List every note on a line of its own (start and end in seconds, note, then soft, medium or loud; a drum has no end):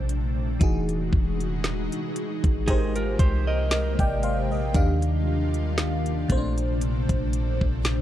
0.00 0.58 A#1 loud
0.00 0.56 A#2 medium
0.00 0.58 A#2 medium
0.00 0.58 C3 medium
0.00 0.57 A3 medium
0.00 0.58 A3 medium
0.00 0.57 D4 medium
0.00 0.61 D4 medium
0.00 0.58 C5 medium
0.09 closed hi-hat medium
0.59 1.11 E1 loud
0.59 2.63 E3 medium
0.59 2.66 E3 medium
0.59 2.66 G#3 medium
0.59 2.64 D#4 medium
0.59 2.66 D#4 medium
0.59 2.66 F#4 loud
0.59 2.64 F#4 medium
0.59 2.65 G#4 medium
0.59 kick loud
0.59 closed hi-hat medium
0.89 closed hi-hat soft
1.13 1.89 E1 loud
1.13 kick loud
1.40 closed hi-hat soft
1.64 snare loud
1.64 closed hi-hat medium
1.92 closed hi-hat medium
2.16 closed hi-hat medium
2.44 3.16 G#1 loud
2.44 kick loud
2.44 closed hi-hat medium
2.66 4.72 C3 medium
2.66 4.70 G#3 medium
2.66 4.72 G#3 medium
2.66 4.73 A#3 medium
2.66 2.95 D#4 medium
2.66 4.72 G4 medium
2.66 4.71 G4 medium
2.66 2.94 G#4 medium
2.66 3.70 A#4 medium
2.66 3.70 C5 medium
2.66 kick loud
2.66 closed hi-hat medium
2.96 3.19 F4 medium
2.96 3.18 A#4 medium
2.96 closed hi-hat medium
3.19 3.96 C2 loud
3.19 3.46 G4 medium
3.19 3.46 C5 medium
3.19 kick loud
3.19 closed hi-hat medium
3.47 4.71 A#4 medium
3.47 4.71 D#5 medium
3.71 3.98 A#4 medium
3.71 3.98 D#5 medium
3.71 snare loud
3.71 closed hi-hat medium
3.99 4.52 G#1 loud
3.99 4.22 D5 medium
3.99 4.22 G5 medium
3.99 kick medium
3.99 closed hi-hat soft
4.23 4.50 C5 medium
4.23 4.50 F5 medium
4.23 closed hi-hat medium
4.51 4.73 A#1 medium
4.51 5.01 A#4 medium
4.51 5.00 D#5 medium
4.74 6.26 D#2 loud
4.74 6.30 D#3 medium
4.74 6.28 D#3 medium
4.74 6.28 G3 medium
4.74 8.02 D4 medium
4.74 6.30 D4 medium
4.74 6.28 F4 medium
4.74 6.30 G4 medium
4.74 6.30 F5 medium
4.74 kick loud
4.74 closed hi-hat medium
5.02 closed hi-hat medium
5.54 closed hi-hat soft
5.78 snare loud
5.78 closed hi-hat medium
6.06 closed hi-hat medium
6.28 7.06 A#1 loud
6.28 8.02 A#2 medium
6.28 8.02 C3 medium
6.28 8.02 A3 medium
6.28 6.37 C4 medium
6.28 8.02 C5 medium
6.28 kick loud
6.28 closed hi-hat medium
6.37 8.02 D4 medium
6.58 closed hi-hat medium
6.81 closed hi-hat medium
7.09 7.59 A#1 loud
7.09 kick medium
7.09 closed hi-hat medium
7.33 closed hi-hat medium
7.61 8.02 A#1 loud
7.61 kick medium
7.85 snare loud
7.85 closed hi-hat medium